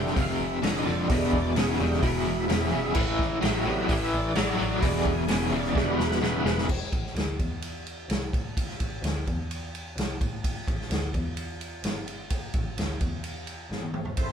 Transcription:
Already playing: F1 F2 D3 E3 G3 A3 G5
0.06 snare
0.15 F1 F2 C3, kick, open hi-hat
0.20 F5
0.39 F1 E5
0.62 F1 F2 D3 D#5, snare, open hi-hat
0.85 F1 F2 D3 D5
1.06 E2 D3 G3 G#3 E5, kick, open hi-hat
1.10 E1 B2
1.33 E1 D5, kick
1.55 E1 E2 C#3 G#4, snare, open hi-hat
1.80 E1 E2 C#3 D3 G3 G#3 G4
1.93 snare
2.02 E1 E2 B2, kick, open hi-hat
2.07 E4
2.26 E1
2.48 E1 E2 C#3, snare, open hi-hat
2.72 E1 E2 C#3
2.94 A1 A2 E3, kick, crash
3.19 kick, snare
3.41 A1 A2 F#3 D#5, snare, open hi-hat
3.46 E5
3.65 A1 A2 C3 F#3 G3
3.69 B3 E5
3.88 A1 A2 E3, kick, open hi-hat
4.12 A1 C#5 D5
4.35 A1 A2 F#3, snare, open hi-hat
4.58 A1 A2 F#3 C#5
4.62 D5
4.81 E1 E2 B2 D3 G3 G#3, kick, open hi-hat
5.05 E1, kick
5.09 G#4
5.28 E1 E2 C#3, snare, open hi-hat
5.51 E1 E2 C#3
5.55 D5
5.64 snare
5.75 E1 E2 B2 D3 G3 G#3, kick, snare
5.79 B4
5.98 E1, snare
6.11 snare
6.21 E1 E2 C#3, snare
6.44 E1 E2 C#3, snare
6.58 snare
6.69 kick, crash
6.82 snare
6.92 A1, kick, ride
7.06 snare
7.14 D2, snare, ride
7.39 E2, kick, ride
7.62 ride
7.87 ride
8.08 C2, snare, ride
8.33 A2, kick, ride
8.57 kick, ride
8.70 snare
8.80 A1, kick, ride
9.02 D2, snare, ride
9.27 E2, kick, ride
9.51 ride
9.75 ride
9.96 C2, snare, ride
10.21 A2, kick, ride
10.44 kick, ride
10.68 A1, kick, ride
10.81 snare
10.90 D2, snare, ride
11.14 E2, kick, ride
11.37 ride
11.61 ride
11.83 G1, snare, ride
12.08 ride
12.30 kick, ride
12.54 A1, kick, ride
12.77 D2, snare, ride
13.01 E2, kick, ride
13.24 ride
13.47 ride
13.69 G1, snare
13.82 high tom
13.94 mid tom
14.05 floor tom
14.17 C4 E4 A4 C5, kick, ride

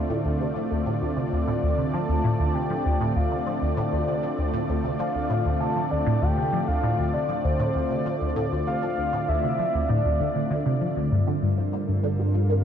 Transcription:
Already playing: D3 A3 C4 F4 D5
0.09 A2
0.25 D2
0.40 C3
0.56 F3
0.71 D2
0.86 A2
1.02 D2
1.17 C3
1.32 D2 D5
1.47 A2
1.63 D2
1.78 C3
1.93 F3 A5
2.09 D2
2.24 A2
2.39 D2
2.55 C3 G5
2.70 F3
2.85 D2
3.01 A2
3.16 D2 F5
3.31 C3
3.46 F3
3.62 D2
3.77 A2 D5
3.92 D2
4.08 C3
4.23 F3
4.38 D2
4.54 A2
4.69 D2
4.84 C3
4.99 F3 F5
5.15 D2
5.30 A2
5.45 D2
5.61 C3 A5
5.76 F3
5.91 D2 D5
6.07 A2
6.22 D2 G5
6.37 C3
6.53 F3
6.68 D2 F5
6.83 A2
6.98 D2
7.14 C3 D5
7.29 F3
7.44 D2 C5
7.60 A2
7.75 D2
7.90 C3
8.06 F3
8.21 D2
8.36 A2
8.52 D2
8.67 C3 F5
8.82 F3
8.98 D2
9.13 A2
9.28 D2 E5
9.43 C3
9.59 F3
9.74 D2
9.89 A2 D5
10.05 D2
10.20 D3
10.35 D3
10.50 D3
10.66 C3
10.81 F3
10.96 D2
11.12 G2 G3 C5
11.18 D4
11.25 D3 A#4
11.42 G2 A4
11.58 F3
11.73 A#3
11.88 G2
12.04 D3 F5
12.19 G2
12.34 F3
12.50 A#3

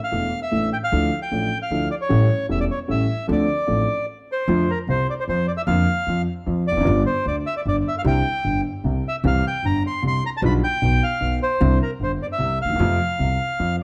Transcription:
0.04 F5
0.11 E1 E2 E3 A3 D4 A4
0.43 E5
0.51 A1 A2 E3 A3 D4 A4
0.73 G5
0.84 F5
0.92 D2 D3 F3 D4 E4 A4
1.22 G5
1.31 A1 A2 F3 D4 E4 A4
1.62 F5
1.71 D2 D3 F3 D4 E4 A4
1.91 D5
2.01 C#5
2.09 A1 A2 G3 C#4 E4 A4
2.49 E1 E2 G3 C#4 E4 A4 E5
2.61 D5
2.71 C#5
2.88 A1 A2 G3 C#4 E4 A4 E5
3.27 D2 D3 F3 C4 D4 A4
3.32 D5
3.67 A1 A2 F3 C4 D4 A4
4.32 C5
4.48 F2 D3 F3 A3 C4 F4
4.70 A#4
4.87 C2 C3 C5
5.10 D5
5.20 C5
5.28 F2 F3 C5
5.48 D5
5.57 E5
5.67 F2 D3 F3 A#3 F4 F5
6.07 F2 F3
6.46 F2 F3
6.68 E1 D5
6.72 E2
6.76 F1 F2
6.81 F#1 F#2 G3 B3
6.85 G1 G2 D3 F4
7.06 C5
7.25 D2 D3 D5
7.47 E5
7.57 D5
7.65 G1 G2 D5
7.88 E5
7.98 F5
8.04 C2 C3 D3 G3 C4 E4 G5
8.44 G1 G2
8.84 C2 C3
9.08 E5
9.24 C2 C3 E3 G3 C4 G4 F5
9.47 G5
9.63 G1 G2 A#5
9.87 C6
10.03 C2 C3
10.08 C6
10.26 A#5
10.37 A5
10.42 B1 B2 D3 G3 B3 F4 B5
10.64 G5
10.82 B1 B2
11.03 F5
11.21 B1 B2
11.43 C5
11.60 C2 C3 D3 G3 C4 E4
11.83 A#4
12.00 G1 G2 C5
12.23 D5
12.32 E5
12.39 C2 C3
12.62 D2 F5
12.69 D#2
12.74 E2
12.79 F2 C3 F3 A3 F4
13.19 C2 C3
13.59 F2 F3

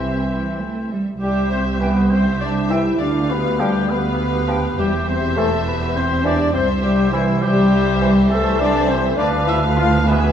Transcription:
Already playing: C2 C3 E3 C4 E4 E5 G5 C6
0.30 E3
0.61 A3
0.91 G3
1.20 C2 G3 G4 C5 E5
1.50 C4 C5
1.80 E3 B3 B4 G5
2.10 C4 G4 C5 E5
2.41 D4 D5
2.69 E3 E4 E5 G5
2.99 D2 D4 G4 B4 D5 F5
3.29 B3 B4
3.59 F3 G3 G4 G5
3.89 B3 G4 B4 F5
4.48 F3 G5
4.78 E1 E2 G3 G4 C5 E5
5.06 C4 C5
5.36 E3 A3 A4 C5
5.67 B3 B4
5.95 C4 C5
6.24 E3 D4 C5 D5
6.53 C2 C4 C5 E5
6.82 G3 G4
7.11 E3 E4 C5
7.41 G3 G4 C5 E5
8.01 E3 C5
8.29 E3 A3 A4 C5 E5
8.60 D4 D5
8.89 C4 C5
9.17 D2 F3 D4 B4 D5 F5
9.47 E4 E5
9.77 F4 F5
10.06 E3 B3 G#4 B4 E5 G#5

